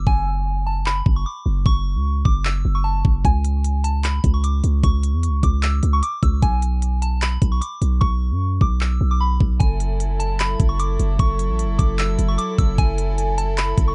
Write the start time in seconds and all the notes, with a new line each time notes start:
0.07 F#1 G#5, kick
0.67 A5
0.86 B5, clap
1.06 F#1, kick
1.16 C#6
1.26 D6
1.46 F#1
1.66 F#1 C#6, kick
1.95 C#2
2.25 F#1 D6, kick
2.45 E6, clap
2.65 F#1
2.75 C#6
2.84 A5
3.05 F#1, kick
3.25 C#2 G#5, kick, closed hi-hat
3.45 closed hi-hat
3.64 closed hi-hat
3.84 A5, closed hi-hat
4.04 B5, clap, closed hi-hat
4.24 C#2, kick, closed hi-hat
4.34 C#6
4.44 D6, closed hi-hat
4.64 C#2, closed hi-hat
4.83 C#2 C#6, kick, closed hi-hat
5.03 closed hi-hat
5.13 E2
5.23 closed hi-hat
5.28 C#2
5.43 C#2 D6, kick, closed hi-hat
5.63 E6, clap, closed hi-hat
5.83 C#2, closed hi-hat
5.93 C#6
6.03 D6, closed hi-hat
6.23 C#2 E6, kick, closed hi-hat
6.42 B1 G#5, kick, closed hi-hat
6.62 closed hi-hat
6.82 closed hi-hat
7.02 A5, closed hi-hat
7.22 B5, clap, closed hi-hat
7.42 B1, kick, closed hi-hat
7.52 C#6
7.61 D6, closed hi-hat
7.82 B1, closed hi-hat
8.01 B1 C#6, kick
8.31 F#2
8.61 B1 D6, kick
8.81 E6, clap
9.01 B1
9.11 D6
9.21 B5
9.40 B1, kick
9.60 F#1 F#3 E4 A4 G#5, kick, closed hi-hat
9.80 closed hi-hat
10.00 closed hi-hat
10.20 A5, closed hi-hat
10.40 B5, clap, closed hi-hat
10.60 F#1, kick, closed hi-hat
10.69 C#6
10.80 D6, closed hi-hat
10.99 F#1, closed hi-hat
11.19 F#1 C#6, kick, closed hi-hat
11.39 closed hi-hat
11.49 A1
11.59 closed hi-hat
11.64 F#1
11.79 F#1 D6, kick, closed hi-hat
11.99 E6, clap, closed hi-hat
12.19 F#1, closed hi-hat
12.28 C#6
12.38 D6, closed hi-hat
12.58 F#1 E6, kick, closed hi-hat
12.78 F#1 G#5, kick, closed hi-hat
12.98 closed hi-hat
13.18 closed hi-hat
13.38 A5, closed hi-hat
13.58 B5, clap, closed hi-hat
13.78 F#1, kick, closed hi-hat
13.88 C#6